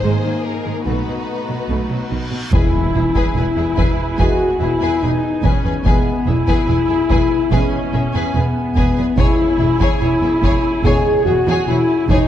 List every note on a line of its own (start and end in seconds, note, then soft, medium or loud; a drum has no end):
0.00 0.11 G#1 medium
0.00 0.12 G#2 soft
0.00 0.23 G#3 medium
0.00 0.83 A#3 medium
0.00 0.83 A#3 soft
0.00 0.85 D#4 soft
0.00 2.18 D#4 medium
0.00 0.84 G#4 soft
0.00 0.42 C5 medium
0.00 reverse cymbal medium
0.24 0.33 G#2 soft
0.24 0.32 D#3 soft
0.44 0.86 A#4 medium
0.65 0.74 G#2 soft
0.65 0.73 D#3 soft
0.86 0.94 B1 soft
0.86 0.95 B2 medium
0.86 1.06 A3 soft
0.86 2.22 A3 soft
0.86 2.33 B3 soft
0.86 2.30 D#4 soft
0.86 2.30 F#4 soft
0.86 2.09 B4 medium
1.07 1.16 B2 soft
1.07 1.15 F#3 soft
1.48 1.57 B2 soft
1.48 1.56 F#3 soft
1.69 1.77 B1 soft
1.69 1.78 B2 soft
1.69 1.89 A3 soft
1.89 1.99 B2 soft
1.89 1.97 F#3 soft
2.10 2.19 B1 soft
2.10 2.20 B2 soft
2.10 2.18 D#3 soft
2.31 2.40 B2 soft
2.31 2.39 F#3 soft
2.52 2.61 E1 medium
2.52 2.61 E2 medium
2.52 3.74 E2 medium
2.52 2.84 E3 soft
2.52 2.84 G#3 soft
2.52 5.83 B3 medium
2.52 3.32 E4 medium
2.52 2.73 G#4 soft
2.52 5.83 G#4 soft
2.52 2.73 B4 medium
2.52 5.83 B4 medium
2.52 2.72 G#5 soft
2.52 5.83 G#5 medium
2.52 taiko medium
2.52 impact medium
2.94 3.03 E1 soft
2.94 3.03 E2 soft
2.94 3.04 G#4 soft
2.94 3.02 E5 soft
3.15 3.24 E2 soft
3.15 3.35 G#4 medium
3.15 3.35 B4 medium
3.15 3.34 G#5 soft
3.15 taiko medium
3.35 3.44 E1 soft
3.35 3.44 E2 soft
3.35 4.17 E4 medium
3.35 3.45 G#4 soft
3.35 3.45 B4 soft
3.35 3.45 G#5 soft
3.57 3.65 E2 soft
3.57 3.66 G#4 soft
3.57 3.65 E5 soft
3.76 3.86 E1 medium
3.76 3.86 E2 medium
3.76 3.97 G#4 soft
3.76 3.97 B4 medium
3.76 3.97 G#5 medium
3.76 taiko medium
4.17 4.27 E1 medium
4.17 4.27 E2 medium
4.17 4.50 E3 soft
4.17 4.50 G#3 medium
4.17 4.61 F#4 medium
4.17 4.39 G#4 medium
4.17 4.39 B4 medium
4.17 4.38 G#5 medium
4.17 taiko medium
4.60 4.69 E1 soft
4.60 4.69 E2 soft
4.60 5.02 E4 medium
4.60 5.03 E4 medium
4.60 4.71 G#4 soft
4.60 4.68 E5 soft
4.80 4.90 E2 medium
4.80 5.02 G#4 soft
4.80 5.01 B4 soft
4.80 5.00 G#5 medium
5.01 5.11 E1 soft
5.01 5.11 E2 soft
5.01 5.44 D#4 medium
5.01 5.45 D#4 medium
5.01 5.11 G#4 soft
5.01 5.11 B4 soft
5.01 5.09 G#5 soft
5.42 5.52 E1 medium
5.42 5.52 E2 medium
5.42 5.85 C#4 medium
5.42 5.87 C#4 medium
5.42 5.63 G#4 soft
5.42 5.63 B4 medium
5.42 5.62 G#5 soft
5.42 taiko medium
5.64 5.73 E2 soft
5.64 5.72 G#4 soft
5.64 5.73 B4 soft
5.64 5.73 G#5 soft
5.84 5.93 E1 medium
5.84 5.94 E2 medium
5.84 6.16 E3 soft
5.84 6.16 G#3 soft
5.84 9.14 B3 medium
5.84 6.27 B3 medium
5.84 9.14 G#4 medium
5.84 6.05 G#4 medium
5.84 6.05 B4 medium
5.84 9.14 E5 medium
5.84 6.04 G#5 medium
5.84 9.15 G#5 medium
5.84 taiko medium
6.26 6.35 E1 soft
6.26 6.36 E2 soft
6.26 7.53 E4 medium
6.26 6.35 G#4 soft
6.26 6.34 E5 soft
6.47 6.56 E2 medium
6.47 6.67 G#4 medium
6.47 6.67 B4 medium
6.47 6.67 G#5 medium
6.47 taiko medium
6.68 6.76 E1 soft
6.68 6.77 E2 soft
6.68 6.76 G#4 soft
6.68 6.77 B4 soft
6.68 6.76 G#5 soft
6.88 6.98 E2 soft
6.88 6.97 G#4 soft
6.88 6.96 E5 soft
7.09 7.18 E1 medium
7.09 7.19 E2 medium
7.09 7.30 G#4 medium
7.09 7.29 B4 medium
7.09 7.30 G#5 medium
7.09 taiko medium
7.51 7.60 E1 medium
7.51 7.61 E2 medium
7.51 7.83 E3 medium
7.51 7.83 G#3 medium
7.51 8.34 C#4 medium
7.51 7.71 G#4 medium
7.51 7.71 B4 medium
7.51 7.71 G#5 medium
7.51 taiko medium
7.93 8.02 E1 soft
7.93 8.03 E2 soft
7.93 8.02 G#4 soft
7.93 8.01 E5 soft
8.14 8.23 E2 medium
8.14 8.34 G#4 medium
8.14 8.34 B4 medium
8.14 8.33 G#5 medium
8.34 8.43 E1 soft
8.34 8.44 E2 soft
8.34 9.19 B3 medium
8.34 9.19 B3 soft
8.34 8.43 G#4 soft
8.34 8.43 B4 soft
8.34 8.42 G#5 soft
8.76 8.85 E1 medium
8.76 8.85 E2 medium
8.76 8.96 G#4 medium
8.76 8.96 B4 medium
8.76 8.95 G#5 soft
8.76 taiko medium
8.96 9.06 E2 soft
8.96 9.05 G#4 soft
8.96 9.05 B4 soft
8.96 9.04 G#5 soft
9.17 9.26 E1 medium
9.17 9.27 E2 medium
9.17 9.49 C#3 medium
9.17 9.49 G#3 soft
9.17 12.28 C#4 medium
9.17 9.85 E4 medium
9.17 10.00 E4 medium
9.17 12.28 G#4 medium
9.17 9.38 G#4 medium
9.17 9.38 C#5 medium
9.17 12.28 C#5 medium
9.17 9.37 G#5 medium
9.17 12.28 G#5 medium
9.17 taiko medium
9.59 9.68 E1 soft
9.59 9.68 E2 soft
9.59 9.69 G#4 soft
9.59 9.67 E5 soft
9.80 9.89 E2 medium
9.80 10.00 G#4 medium
9.80 10.01 C#5 medium
9.80 9.99 G#5 medium
9.80 taiko medium
10.00 10.09 E1 soft
10.00 10.10 E2 soft
10.00 10.83 E4 medium
10.00 10.84 E4 medium
10.00 10.09 G#4 soft
10.00 10.10 C#5 soft
10.00 10.08 G#5 soft
10.22 10.30 E2 soft
10.22 10.32 G#4 soft
10.22 10.31 E5 soft
10.42 10.50 E1 medium
10.42 10.50 E2 medium
10.42 10.63 G#4 medium
10.42 10.63 C#5 medium
10.42 10.63 G#5 medium
10.42 taiko medium
10.84 10.92 E1 medium
10.84 10.92 E2 medium
10.84 11.16 C#3 medium
10.84 11.16 G#3 medium
10.84 11.25 G#4 medium
10.84 11.26 G#4 medium
10.84 11.04 G#4 medium
10.84 11.05 C#5 medium
10.84 11.05 G#5 medium
10.84 taiko medium
11.24 11.34 E1 soft
11.24 11.35 E2 soft
11.24 11.66 F#4 medium
11.24 11.68 F#4 medium
11.24 11.35 G#4 soft
11.24 11.34 E5 soft
11.47 11.55 E2 medium
11.47 11.68 G#4 medium
11.47 11.68 C#5 medium
11.47 11.67 G#5 medium
11.67 11.76 E1 soft
11.67 11.76 E2 soft
11.67 12.09 E4 medium
11.67 12.10 E4 medium
11.67 11.78 G#4 soft
11.67 11.78 C#5 soft
11.67 11.76 G#5 medium
12.08 12.17 E1 medium
12.08 12.18 E2 medium
12.08 12.28 D#4 medium
12.08 12.28 G#4 medium
12.08 12.28 C#5 medium
12.08 12.28 G#5 medium
12.08 taiko medium